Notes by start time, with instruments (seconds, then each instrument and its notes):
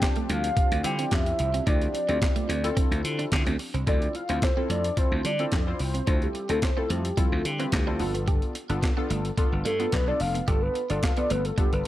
Already playing: analog synth pad F3 C4 D4 G4, analog polysynth C4 D4 F4 G4, soft synth lead G5
0.02 muted clean electric guitar stroke, kick, snare, clap, closed hi-hat
0.16 clean electric guitar A3, closed hi-hat
0.29 slap bass D2, clean electric guitar G3, soft synth lead F5, closed hi-hat
0.44 closed hi-hat
0.57 muted clean electric guitar stroke, kick, closed hi-hat
0.72 slap bass D2, closed hi-hat
0.83 slap bass D3, clean electric guitar G3, analog polysynth C4 E4 F4 G4, soft synth lead G5, closed hi-hat
0.99 clean electric guitar C4, closed hi-hat
1.11 slap bass F2, clean electric guitar D4, soft synth lead E5, kick, snare, clap, closed hi-hat
1.26 muted clean electric guitar stroke, closed hi-hat
1.39 slap bass C2, closed hi-hat
1.54 clean electric guitar C4, closed hi-hat
1.67 slap bass D2, analog polysynth C4 E4 F4 G4, clean electric guitar D4, soft synth lead D5, kick, closed hi-hat
1.82 closed hi-hat
1.94 muted clean electric guitar stroke, closed hi-hat
2.09 slap bass D2, clean electric guitar C4, analog polysynth C4 E4 F4 G4, closed hi-hat
2.22 muted clean electric guitar stroke, kick, snare, clap, closed hi-hat
2.36 clean electric guitar A3, closed hi-hat
2.49 slap bass D2, clean electric guitar C4, closed hi-hat
2.64 analog polysynth C4 E4 F4 A4, closed hi-hat
2.77 clean electric guitar C4, kick, closed hi-hat
2.91 slap bass D2, closed hi-hat
3.04 slap bass D3, muted clean electric guitar stroke, closed hi-hat
3.19 clean electric guitar D4, closed hi-hat
3.32 slap bass D3, kick, snare, clap, closed hi-hat
3.46 slap bass D2, clean electric guitar C4, closed hi-hat
3.59 muted clean electric guitar stroke, open hi-hat
3.74 slap bass C2, clean electric guitar C4, closed hi-hat
3.87 slap bass D2, analog polysynth C4 E4 F4 A4, clean electric guitar D4, soft synth lead D5, kick, closed hi-hat
4.02 closed hi-hat
4.15 soft synth lead F5, muted clean electric guitar stroke, closed hi-hat
4.29 slap bass D2, analog polysynth C4 E4 F4 A4, clean electric guitar C4, closed hi-hat
4.42 soft synth lead C5, muted clean electric guitar stroke, kick, snare, clap, closed hi-hat
4.57 analog polysynth C4 E4 F4 A4, clean electric guitar C4
4.70 slap bass F2, clean electric guitar A3, soft synth lead D5, closed hi-hat
4.84 closed hi-hat
4.97 analog polysynth C4 E4 F4 A4, soft synth lead C5, muted clean electric guitar stroke, kick, closed hi-hat
5.12 slap bass D2
5.25 slap bass D3, clean electric guitar G3, soft synth lead D5, closed hi-hat
5.39 clean electric guitar C4, analog polysynth C4 E4 F4 A4, closed hi-hat
5.52 slap bass F2, clean electric guitar D4, kick, snare, clap, closed hi-hat
5.67 analog polysynth C4 E4 F4 C5, muted clean electric guitar stroke
5.79 slap bass C2, soft synth lead C5, open hi-hat
5.94 clean electric guitar C4, closed hi-hat
6.07 slap bass D2, analog polysynth C4 E4 F4 A4, clean electric guitar D4, kick, closed hi-hat
6.22 soft synth lead G4, closed hi-hat
6.35 muted clean electric guitar stroke, closed hi-hat
6.49 slap bass D2, analog polysynth C4 E4 F4 A4, clean electric guitar D4, soft synth lead A4, closed hi-hat
6.62 soft synth lead C5, muted clean electric guitar stroke, kick, snare, clap, closed hi-hat
6.77 analog polysynth C4 E4 F4 A4, clean electric guitar C4, soft synth lead A4
6.90 slap bass F2, clean electric guitar A3, soft synth lead G4, closed hi-hat
7.05 closed hi-hat
7.17 clean electric guitar G3, analog polysynth C4 E4 F4 A4, soft synth lead F4, kick, closed hi-hat
7.32 slap bass D2
7.45 slap bass D3, soft synth lead G4, muted clean electric guitar stroke, closed hi-hat
7.59 analog polysynth C4 E4 F4 B4, clean electric guitar C4, closed hi-hat
7.72 slap bass D2, kick, snare, clap, closed hi-hat
7.87 analog polysynth C4 E4 F4 A4, clean electric guitar D4
7.99 slap bass G1, analog polysynth B3 D4 F4 A4, soft synth lead F4, muted clean electric guitar stroke, open hi-hat
8.14 clean electric guitar B3, closed hi-hat
8.28 clean electric guitar G4, kick, closed hi-hat
8.42 closed hi-hat
8.55 muted clean electric guitar stroke, closed hi-hat
8.69 slap bass G1, analog polysynth B3 D4 F4 A4, clean electric guitar D4, closed hi-hat
8.82 muted clean electric guitar stroke, kick, snare, clap, closed hi-hat
8.97 clean electric guitar B3, analog polysynth B3 D4 F4 A4
9.10 slap bass G1, clean electric guitar A3, closed hi-hat
9.25 closed hi-hat
9.37 analog polysynth B3 D4 F4 A4, muted clean electric guitar stroke, kick, closed hi-hat
9.52 slap bass G1
9.65 slap bass G2, clean electric guitar G3, soft synth lead A4, closed hi-hat
9.80 clean electric guitar B3, analog polysynth B3 D4 F4 A4, closed hi-hat
9.92 slap bass B1, clean electric guitar D4, soft synth lead B4, kick, snare, clap, closed hi-hat
10.07 analog polysynth B3 D4 F4 A4, soft synth lead D5, muted clean electric guitar stroke
10.20 slap bass F1, soft synth lead F5, open hi-hat
10.35 clean electric guitar B3, closed hi-hat
10.48 slap bass G1, analog polysynth B3 D4 F4 A4, clean electric guitar G4, soft synth lead A4, kick, closed hi-hat
10.62 soft synth lead B4
10.75 muted clean electric guitar stroke, closed hi-hat
10.90 slap bass G1, analog polysynth B3 D4 F4 A4, clean electric guitar D4, soft synth lead D5, closed hi-hat
11.03 soft synth lead F5, kick, snare, clap, closed hi-hat
11.17 analog polysynth B3 D4 F4 A4, clean electric guitar B3, soft synth lead D5, closed hi-hat
11.30 slap bass G1, clean electric guitar A3, soft synth lead B4, closed hi-hat
11.45 soft synth lead A4, closed hi-hat
11.58 clean electric guitar G3, analog polysynth B3 D4 F4 A4, soft synth lead G4, kick, closed hi-hat
11.73 slap bass G1, soft synth lead B4, closed hi-hat